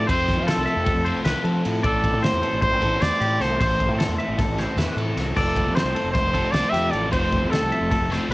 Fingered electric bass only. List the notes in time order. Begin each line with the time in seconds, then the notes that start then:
0.09 F2
0.37 F3
0.57 C2
0.76 F2
0.95 F2
1.25 C2
1.44 F3
1.65 A2
1.84 A1
2.14 A2
2.33 E2
2.53 A1
2.73 A1
3.02 E2
3.21 A2
3.40 C2
3.60 A1
3.88 A2
4.08 E2
4.28 A1
4.48 A1
4.77 E2
4.96 A2
5.16 C2
5.37 F1
5.65 F2
5.84 C2
6.04 F1
6.24 F1
6.53 C2
6.73 F2
6.93 A1
7.13 F1
7.41 F2
7.62 C2
7.81 F1
8.00 F1
8.29 C2